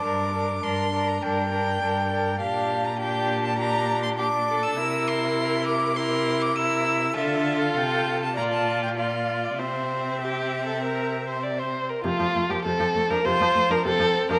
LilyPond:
<<
  \new Staff \with { instrumentName = "Violin" } { \time 4/4 \key g \dorian \tempo 4 = 100 d'''4 c'''8. bes''16 g''2 | \key f \major f''8. bes''16 g''8. a''16 bes''8. c'''16 d'''8. e'''16~ | e'''8 c'''4 d'''8 c'''8. d'''16 e'''4 | e''8. f''16 g''8. a''16 bes''16 a''8 g''16 f''8. d''16 |
e''2.~ e''8 r8 | a8. bes16 c'8. d'16 f'8. d'16 c'8. d'16 | }
  \new Staff \with { instrumentName = "Violin" } { \time 4/4 \key g \dorian bes'8 bes'8 bes'8 bes'8 bes'8 bes'8 bes'8 bes'8 | \key f \major g'4 g'4 g'4 g'8 a'8 | bes'2 bes'4 bes'4 | a'2 d''4 d''4 |
c''4 g'8. a'16 bes'8. c''16 d''16 c''8 bes'16 | f'8. g'16 a'8. bes'16 c''8. bes'16 a'8. bes'16 | }
  \new Staff \with { instrumentName = "Viola" } { \time 4/4 \key g \dorian d'8 d'8 d'8 d'8 d'8 d'8 d'8 d'8 | \key f \major d'4 d'4 d'4 d'4 | e'2 e'4 e'4 | f'2 f'4 f'4 |
c'2.~ c'8. r16 | c16 f16 a16 f16 c16 f16 a16 f16 c16 f16 a16 f16 c16 f16 r16 f16 | }
  \new Staff \with { instrumentName = "Cello" } { \clef bass \time 4/4 \key g \dorian g,4 g,4 g,4 g,4 | \key f \major bes,1 | c1 | d4 c4 bes,2 |
c2.~ c8. r16 | f,16 f,16 f,16 f,16 f,16 f,16 f,16 f,16 f,16 f,16 f,16 f,16 f,16 f,16 r16 f,16 | }
>>